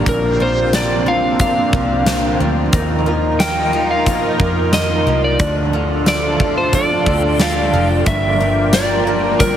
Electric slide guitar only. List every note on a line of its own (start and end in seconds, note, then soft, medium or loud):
0.09 0.42 A#4 medium
0.42 0.75 C5 medium
0.75 1.08 D5 medium
1.08 1.40 F5 medium
1.41 2.36 F5 medium
3.40 3.90 G5 loud
3.91 4.21 F5 medium
4.74 5.24 D#5 loud
5.24 5.55 D5 medium
6.08 6.57 D5 medium
6.58 6.74 C5 medium
6.75 7.40 D5 medium
7.41 8.03 D5 medium
7.41 7.87 F5 medium
8.07 8.76 E5 loud
8.74 9.42 D5 medium
9.40 9.57 A#4 medium